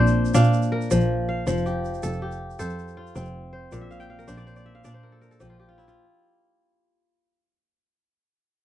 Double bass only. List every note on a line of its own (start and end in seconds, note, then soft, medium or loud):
0.00 0.26 A#1 medium
0.35 0.82 A#2 loud
0.91 1.38 A#1 loud
1.47 1.94 F1 loud
2.04 2.51 F1 medium
2.60 3.07 F2 loud
3.16 3.63 F1 loud
3.72 4.19 A#1 medium
4.28 4.76 A#1 loud
4.85 5.32 A#2 loud
5.41 5.89 A#1 loud